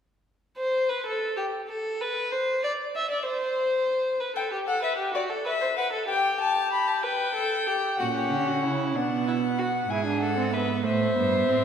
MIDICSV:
0, 0, Header, 1, 5, 480
1, 0, Start_track
1, 0, Tempo, 632244
1, 313, Time_signature, 6, 3, 24, 8
1, 8840, End_track
2, 0, Start_track
2, 0, Title_t, "Violin"
2, 0, Program_c, 0, 40
2, 3311, Note_on_c, 0, 79, 77
2, 3372, Note_off_c, 0, 79, 0
2, 3549, Note_on_c, 0, 78, 79
2, 3666, Note_off_c, 0, 78, 0
2, 3670, Note_on_c, 0, 76, 82
2, 3731, Note_off_c, 0, 76, 0
2, 3909, Note_on_c, 0, 74, 82
2, 3970, Note_off_c, 0, 74, 0
2, 4145, Note_on_c, 0, 76, 80
2, 4379, Note_off_c, 0, 76, 0
2, 4384, Note_on_c, 0, 78, 81
2, 4445, Note_off_c, 0, 78, 0
2, 4621, Note_on_c, 0, 79, 90
2, 4856, Note_off_c, 0, 79, 0
2, 4863, Note_on_c, 0, 81, 84
2, 5098, Note_off_c, 0, 81, 0
2, 5104, Note_on_c, 0, 83, 83
2, 5222, Note_on_c, 0, 81, 75
2, 5233, Note_off_c, 0, 83, 0
2, 5337, Note_off_c, 0, 81, 0
2, 5341, Note_on_c, 0, 79, 92
2, 6055, Note_off_c, 0, 79, 0
2, 6070, Note_on_c, 0, 78, 66
2, 6768, Note_off_c, 0, 78, 0
2, 6797, Note_on_c, 0, 78, 65
2, 7518, Note_on_c, 0, 80, 65
2, 7529, Note_off_c, 0, 78, 0
2, 7757, Note_off_c, 0, 80, 0
2, 7760, Note_on_c, 0, 78, 62
2, 7998, Note_on_c, 0, 76, 62
2, 8009, Note_off_c, 0, 78, 0
2, 8233, Note_off_c, 0, 76, 0
2, 8237, Note_on_c, 0, 76, 68
2, 8840, Note_off_c, 0, 76, 0
2, 8840, End_track
3, 0, Start_track
3, 0, Title_t, "Violin"
3, 0, Program_c, 1, 40
3, 436, Note_on_c, 1, 72, 76
3, 679, Note_on_c, 1, 71, 72
3, 691, Note_off_c, 1, 72, 0
3, 799, Note_off_c, 1, 71, 0
3, 804, Note_on_c, 1, 69, 76
3, 1034, Note_off_c, 1, 69, 0
3, 1039, Note_on_c, 1, 67, 75
3, 1099, Note_off_c, 1, 67, 0
3, 1284, Note_on_c, 1, 69, 73
3, 1527, Note_on_c, 1, 71, 77
3, 1538, Note_off_c, 1, 69, 0
3, 1764, Note_on_c, 1, 72, 76
3, 1775, Note_off_c, 1, 71, 0
3, 1998, Note_off_c, 1, 72, 0
3, 2003, Note_on_c, 1, 74, 76
3, 2063, Note_off_c, 1, 74, 0
3, 2245, Note_on_c, 1, 76, 75
3, 2355, Note_off_c, 1, 76, 0
3, 2360, Note_on_c, 1, 74, 71
3, 2468, Note_off_c, 1, 74, 0
3, 2473, Note_on_c, 1, 72, 80
3, 3189, Note_on_c, 1, 71, 66
3, 3200, Note_off_c, 1, 72, 0
3, 3307, Note_off_c, 1, 71, 0
3, 3312, Note_on_c, 1, 69, 63
3, 3425, Note_off_c, 1, 69, 0
3, 3430, Note_on_c, 1, 67, 69
3, 3477, Note_off_c, 1, 67, 0
3, 3550, Note_on_c, 1, 69, 67
3, 3661, Note_off_c, 1, 69, 0
3, 3666, Note_on_c, 1, 71, 66
3, 3777, Note_off_c, 1, 71, 0
3, 3782, Note_on_c, 1, 67, 67
3, 3898, Note_off_c, 1, 67, 0
3, 3903, Note_on_c, 1, 66, 64
3, 4021, Note_on_c, 1, 69, 69
3, 4033, Note_off_c, 1, 66, 0
3, 4137, Note_off_c, 1, 69, 0
3, 4141, Note_on_c, 1, 71, 68
3, 4190, Note_off_c, 1, 71, 0
3, 4259, Note_on_c, 1, 72, 69
3, 4308, Note_off_c, 1, 72, 0
3, 4381, Note_on_c, 1, 71, 73
3, 4495, Note_off_c, 1, 71, 0
3, 4500, Note_on_c, 1, 69, 67
3, 4615, Note_off_c, 1, 69, 0
3, 4620, Note_on_c, 1, 67, 74
3, 5339, Note_on_c, 1, 71, 71
3, 5350, Note_off_c, 1, 67, 0
3, 5576, Note_off_c, 1, 71, 0
3, 5580, Note_on_c, 1, 69, 66
3, 5826, Note_on_c, 1, 67, 68
3, 5838, Note_off_c, 1, 69, 0
3, 6063, Note_off_c, 1, 67, 0
3, 6067, Note_on_c, 1, 66, 63
3, 6116, Note_off_c, 1, 66, 0
3, 6192, Note_on_c, 1, 67, 58
3, 6438, Note_on_c, 1, 66, 63
3, 6449, Note_off_c, 1, 67, 0
3, 6555, Note_off_c, 1, 66, 0
3, 6560, Note_on_c, 1, 64, 59
3, 6800, Note_on_c, 1, 62, 65
3, 6812, Note_off_c, 1, 64, 0
3, 7039, Note_off_c, 1, 62, 0
3, 7043, Note_on_c, 1, 64, 56
3, 7104, Note_off_c, 1, 64, 0
3, 7278, Note_on_c, 1, 66, 64
3, 7338, Note_off_c, 1, 66, 0
3, 7516, Note_on_c, 1, 68, 61
3, 7759, Note_on_c, 1, 69, 60
3, 7770, Note_off_c, 1, 68, 0
3, 7996, Note_on_c, 1, 71, 56
3, 8007, Note_off_c, 1, 69, 0
3, 8232, Note_off_c, 1, 71, 0
3, 8236, Note_on_c, 1, 72, 63
3, 8840, Note_off_c, 1, 72, 0
3, 8840, End_track
4, 0, Start_track
4, 0, Title_t, "Viola"
4, 0, Program_c, 2, 41
4, 6073, Note_on_c, 2, 61, 61
4, 6802, Note_on_c, 2, 59, 62
4, 6814, Note_off_c, 2, 61, 0
4, 7514, Note_off_c, 2, 59, 0
4, 7519, Note_on_c, 2, 64, 67
4, 7632, Note_off_c, 2, 64, 0
4, 7637, Note_on_c, 2, 62, 64
4, 7872, Note_off_c, 2, 62, 0
4, 7877, Note_on_c, 2, 60, 67
4, 7994, Note_off_c, 2, 60, 0
4, 7997, Note_on_c, 2, 59, 70
4, 8234, Note_on_c, 2, 57, 74
4, 8245, Note_off_c, 2, 59, 0
4, 8470, Note_off_c, 2, 57, 0
4, 8475, Note_on_c, 2, 59, 72
4, 8716, Note_on_c, 2, 60, 73
4, 8728, Note_off_c, 2, 59, 0
4, 8840, Note_off_c, 2, 60, 0
4, 8840, End_track
5, 0, Start_track
5, 0, Title_t, "Cello"
5, 0, Program_c, 3, 42
5, 6068, Note_on_c, 3, 46, 57
5, 6311, Note_on_c, 3, 50, 54
5, 6323, Note_off_c, 3, 46, 0
5, 6555, Note_on_c, 3, 49, 55
5, 6566, Note_off_c, 3, 50, 0
5, 6795, Note_on_c, 3, 47, 59
5, 6807, Note_off_c, 3, 49, 0
5, 7514, Note_off_c, 3, 47, 0
5, 7518, Note_on_c, 3, 44, 56
5, 8235, Note_on_c, 3, 45, 63
5, 8246, Note_off_c, 3, 44, 0
5, 8474, Note_off_c, 3, 45, 0
5, 8477, Note_on_c, 3, 43, 62
5, 8710, Note_off_c, 3, 43, 0
5, 8715, Note_on_c, 3, 45, 61
5, 8840, Note_off_c, 3, 45, 0
5, 8840, End_track
0, 0, End_of_file